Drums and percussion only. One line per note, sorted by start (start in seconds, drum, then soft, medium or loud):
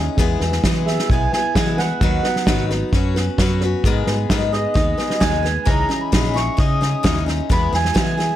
0.17 kick loud
0.17 snare soft
0.41 snare soft
0.52 snare soft
0.64 kick medium
0.64 snare medium
0.87 snare soft
0.99 snare soft
1.10 kick loud
1.10 snare soft
1.33 snare soft
1.55 kick medium
1.55 snare loud
1.79 snare soft
2.01 kick loud
2.01 snare soft
2.24 snare soft
2.36 snare soft
2.47 kick medium
2.47 snare loud
2.71 snare soft
2.93 kick loud
2.93 snare soft
3.16 snare soft
3.38 kick medium
3.38 snare medium
3.61 snare soft
3.84 kick medium
3.84 snare soft
4.07 snare soft
4.30 kick medium
4.30 snare loud
4.53 snare soft
4.75 kick loud
4.75 snare soft
4.99 snare soft
5.10 snare soft
5.21 kick medium
5.21 snare loud
5.45 snare soft
5.67 kick loud
5.67 snare soft
5.90 snare soft
6.13 kick medium
6.13 snare loud
6.36 snare soft
6.58 kick loud
6.58 snare soft
6.82 snare soft
7.04 kick medium
7.04 snare loud
7.28 snare soft
7.50 kick loud
7.50 snare soft
7.74 snare soft
7.85 snare soft
7.96 kick medium
7.96 snare loud
8.19 snare soft